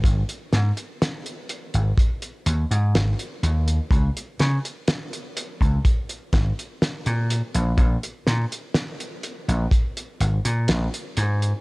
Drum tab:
HH |xxxxxxxxxxxxxxxx|xxxxxxxxxxxxxxxx|xxxxxxxxxxxxxxxx|
SD |--o-o-------o---|--o-o-----o-o---|--o-o-------o---|
BD |o-------o-------|o------oo-o-----|o-------o-------|